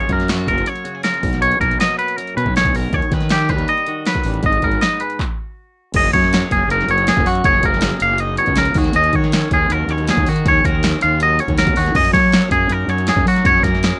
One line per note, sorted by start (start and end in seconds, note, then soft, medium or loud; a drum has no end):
0.00 1.24 F#2 medium
0.00 0.47 F#3 medium
0.00 0.28 F4 medium
0.00 0.84 G#4 medium
0.00 0.11 C#5 medium
0.00 closed hi-hat soft
0.09 0.49 F#2 medium
0.09 1.21 A#3 medium
0.09 0.30 A#4 medium
0.09 kick medium
0.09 closed hi-hat medium
0.20 snare soft
0.20 closed hi-hat soft
0.28 1.04 F4 medium
0.28 0.48 F#4 medium
0.28 snare loud
0.28 closed hi-hat medium
0.47 0.62 F#1 medium
0.47 1.80 F#3 medium
0.47 0.67 A#4 medium
0.47 kick medium
0.47 closed hi-hat medium
0.58 closed hi-hat soft
0.66 1.03 C#5 medium
0.66 closed hi-hat medium
0.76 closed hi-hat soft
0.84 1.21 C#3 medium
0.84 0.95 F#4 medium
0.84 closed hi-hat medium
0.95 1.23 G#4 soft
1.03 1.22 F4 medium
1.03 1.41 A#4 medium
1.03 snare medium
1.03 closed hi-hat medium
1.14 closed hi-hat soft
1.23 1.52 B1 medium
1.23 2.18 B2 medium
1.23 kick medium
1.23 open hi-hat medium
1.33 snare soft
1.33 closed hi-hat soft
1.41 2.72 A#3 medium
1.41 1.60 C#5 medium
1.41 closed hi-hat medium
1.51 closed hi-hat soft
1.60 1.75 B1 medium
1.60 2.35 C#4 soft
1.60 1.80 A#4 medium
1.60 kick medium
1.60 closed hi-hat medium
1.71 closed hi-hat soft
1.80 3.49 F#3 medium
1.80 1.98 D#5 medium
1.80 snare loud
1.80 closed hi-hat medium
1.99 2.16 B4 medium
1.99 closed hi-hat medium
2.08 closed hi-hat soft
2.16 2.75 F#2 medium
2.16 2.36 A#4 medium
2.16 2.56 A#4 medium
2.16 closed hi-hat medium
2.27 closed hi-hat soft
2.37 2.44 B2 medium
2.37 3.12 C#4 medium
2.37 2.56 B4 medium
2.37 closed hi-hat medium
2.45 2.60 B1 medium
2.45 kick medium
2.56 2.73 G#4 medium
2.56 2.76 C#5 medium
2.56 snare medium
2.56 closed hi-hat medium
2.65 2.72 B1 medium
2.65 kick medium
2.65 closed hi-hat soft
2.74 2.89 B1 medium
2.74 2.92 B2 medium
2.74 2.94 A#4 medium
2.74 open hi-hat medium
2.92 3.00 D#2 medium
2.92 3.86 D#3 medium
2.92 3.14 C#5 medium
2.92 kick medium
2.92 closed hi-hat medium
3.02 closed hi-hat soft
3.12 3.51 D#3 medium
3.12 3.29 C#4 medium
3.12 3.32 B4 medium
3.12 kick medium
3.12 snare soft
3.12 closed hi-hat medium
3.21 snare soft
3.21 closed hi-hat soft
3.29 3.41 C#4 medium
3.29 3.49 G4 medium
3.29 snare loud
3.29 closed hi-hat medium
3.41 4.45 D#4 soft
3.49 3.64 D#2 medium
3.49 4.06 G3 medium
3.49 3.69 B4 medium
3.49 kick medium
3.49 closed hi-hat medium
3.58 closed hi-hat soft
3.68 4.07 D#5 medium
3.68 closed hi-hat medium
3.77 closed hi-hat soft
3.87 4.42 D#3 medium
3.87 5.95 F#4 medium
3.87 closed hi-hat medium
4.06 4.26 F#3 medium
4.06 4.45 B4 medium
4.06 snare medium
4.06 closed hi-hat medium
4.14 kick medium
4.14 closed hi-hat soft
4.24 4.39 A1 medium
4.24 4.45 G3 medium
4.24 open hi-hat medium
4.34 closed hi-hat soft
4.43 4.58 G#1 medium
4.43 5.18 G#2 medium
4.43 4.64 D#5 medium
4.43 kick loud
4.43 closed hi-hat medium
4.52 closed hi-hat soft
4.62 4.77 G#1 medium
4.62 5.18 B3 medium
4.62 4.82 A#4 medium
4.62 kick medium
4.62 closed hi-hat medium
4.71 closed hi-hat soft
4.81 5.18 D#4 soft
4.81 5.01 D#5 medium
4.81 snare loud
4.81 closed hi-hat medium
5.00 5.18 G#3 medium
5.00 5.20 B4 medium
5.00 closed hi-hat medium
5.10 closed hi-hat soft
5.19 kick medium
5.19 clap medium
5.94 6.09 F#1 medium
5.94 7.43 F#2 medium
5.94 6.32 G#4 medium
5.94 6.13 D#5 medium
5.94 kick loud
5.94 closed hi-hat medium
5.94 crash loud
6.04 closed hi-hat soft
6.13 6.42 F#2 medium
6.13 6.51 A#3 medium
6.13 6.51 C#5 medium
6.13 kick medium
6.13 closed hi-hat medium
6.24 snare soft
6.33 6.42 F#4 medium
6.33 snare loud
6.33 closed hi-hat medium
6.42 7.44 G#4 soft
6.42 closed hi-hat soft
6.51 6.65 F#1 medium
6.51 7.07 A#3 medium
6.51 6.71 G#4 medium
6.51 kick medium
6.51 closed hi-hat medium
6.68 6.83 F#1 medium
6.68 8.20 D#4 medium
6.68 6.90 A#4 medium
6.68 closed hi-hat medium
6.80 snare soft
6.87 7.10 F#1 medium
6.87 7.25 F#3 medium
6.87 7.09 C#5 medium
6.87 closed hi-hat medium
6.98 closed hi-hat soft
7.07 7.49 A#3 medium
7.07 7.27 G#4 medium
7.07 snare loud
7.07 closed hi-hat medium
7.17 7.24 F#1 loud
7.17 kick medium
7.25 7.40 F#2 medium
7.25 7.49 F#3 medium
7.25 7.46 F#4 medium
7.25 open hi-hat medium
7.35 closed hi-hat soft
7.44 7.59 F#1 medium
7.44 8.77 F#2 medium
7.44 7.83 G#4 medium
7.44 7.64 C#5 medium
7.44 kick loud
7.44 closed hi-hat medium
7.63 7.92 F#1 medium
7.63 8.04 A#3 medium
7.63 8.03 A#4 medium
7.63 kick medium
7.63 closed hi-hat medium
7.74 snare soft
7.81 8.78 G#4 medium
7.81 snare loud
7.81 closed hi-hat loud
8.00 8.37 F#1 medium
8.00 8.20 F5 medium
8.00 closed hi-hat medium
8.04 8.81 A#3 medium
8.18 9.00 D#4 medium
8.18 8.38 D#5 medium
8.18 closed hi-hat medium
8.37 8.58 B2 medium
8.37 8.58 C#5 medium
8.37 closed hi-hat medium
8.46 8.69 C#2 medium
8.46 kick medium
8.46 closed hi-hat soft
8.56 8.77 C#3 medium
8.56 8.78 A#4 medium
8.56 snare loud
8.56 closed hi-hat loud
8.65 closed hi-hat soft
8.74 8.90 D#2 medium
8.74 10.25 D#3 medium
8.74 8.96 F#4 medium
8.74 9.14 G#4 medium
8.74 kick loud
8.74 open hi-hat medium
8.84 snare soft
8.84 closed hi-hat soft
8.93 9.10 D#2 medium
8.93 9.35 C#4 medium
8.93 9.15 D#5 medium
8.93 closed hi-hat medium
9.04 closed hi-hat soft
9.13 9.42 D#3 medium
9.13 9.25 F#4 medium
9.13 9.53 C#5 medium
9.13 kick medium
9.13 closed hi-hat medium
9.24 10.27 G#4 soft
9.24 snare soft
9.32 9.91 C#4 medium
9.32 snare loud
9.32 closed hi-hat medium
9.42 closed hi-hat soft
9.51 9.66 D#2 medium
9.51 10.26 F4 medium
9.51 9.72 G#4 medium
9.51 kick medium
9.51 closed hi-hat medium
9.70 9.84 D#2 medium
9.70 10.09 F#3 medium
9.70 9.90 A#4 medium
9.70 closed hi-hat medium
9.88 10.10 D#2 medium
9.88 10.30 C#4 medium
9.88 10.09 C#5 medium
9.88 closed hi-hat medium
9.98 closed hi-hat soft
10.07 10.31 F#3 medium
10.07 10.29 G#4 medium
10.07 snare loud
10.07 closed hi-hat medium
10.17 10.24 D#2 medium
10.17 kick medium
10.26 11.75 D#3 medium
10.26 10.42 D#3 medium
10.26 10.47 F#4 medium
10.26 10.65 G#4 medium
10.26 open hi-hat medium
10.36 closed hi-hat soft
10.45 10.60 D#2 medium
10.45 10.84 C#4 medium
10.45 10.65 C#5 medium
10.45 kick loud
10.45 closed hi-hat medium
10.65 10.93 D#2 medium
10.65 10.75 F#4 medium
10.65 11.02 A#4 medium
10.65 kick medium
10.65 closed hi-hat medium
10.75 11.78 G#4 soft
10.83 11.40 C#4 medium
10.83 snare loud
10.83 closed hi-hat loud
11.01 11.39 D#2 medium
11.01 11.75 F4 medium
11.01 11.21 F5 medium
11.01 closed hi-hat medium
11.20 11.60 F#3 medium
11.20 11.40 D#5 medium
11.20 closed hi-hat medium
11.39 11.81 C#4 medium
11.39 11.59 C#5 medium
11.39 closed hi-hat medium
11.48 11.70 D#2 medium
11.48 kick medium
11.48 closed hi-hat soft
11.58 11.82 F#3 medium
11.58 11.77 A#4 medium
11.58 snare loud
11.58 closed hi-hat medium
11.67 kick medium
11.67 closed hi-hat soft
11.76 11.92 D#2 medium
11.76 11.94 D#3 medium
11.76 11.96 F#4 medium
11.76 11.95 G#4 medium
11.76 open hi-hat medium
11.86 snare soft
11.86 closed hi-hat soft
11.94 12.09 F#2 medium
11.94 13.43 F#2 medium
11.94 12.34 G#4 medium
11.94 12.13 D#5 medium
11.94 kick loud
11.94 crash medium
12.05 closed hi-hat soft
12.13 12.42 F#3 medium
12.13 12.53 A#3 medium
12.13 12.51 C#5 medium
12.13 kick medium
12.13 snare soft
12.13 closed hi-hat medium
12.32 12.43 F#4 medium
12.32 snare loud
12.32 closed hi-hat medium
12.42 13.45 G#4 medium
12.42 closed hi-hat soft
12.51 12.66 F#2 medium
12.51 13.08 A#3 medium
12.51 12.72 G#4 medium
12.51 kick medium
12.51 closed hi-hat medium
12.69 12.85 F#2 medium
12.69 13.99 D#4 medium
12.69 12.89 A#4 medium
12.69 closed hi-hat medium
12.88 13.10 F#2 medium
12.88 13.27 F#3 medium
12.88 13.08 C#5 medium
12.88 closed hi-hat medium
12.98 closed hi-hat soft
13.07 13.57 A#3 medium
13.07 13.28 G#4 medium
13.07 snare loud
13.07 closed hi-hat medium
13.16 13.24 F#2 loud
13.16 kick medium
13.26 13.40 F#3 medium
13.26 13.57 F#3 medium
13.26 13.46 F#4 medium
13.26 open hi-hat medium
13.36 snare soft
13.36 closed hi-hat soft
13.44 13.99 F#2 medium
13.44 13.59 F#2 medium
13.44 13.54 F#4 medium
13.44 13.63 C#5 medium
13.44 kick loud
13.44 closed hi-hat medium
13.54 13.82 G#4 medium
13.63 13.92 F#2 medium
13.63 13.99 A#3 medium
13.63 13.99 A#4 medium
13.63 kick medium
13.63 snare soft
13.63 closed hi-hat medium
13.75 snare soft
13.83 13.99 G#4 medium
13.83 snare loud
13.83 closed hi-hat medium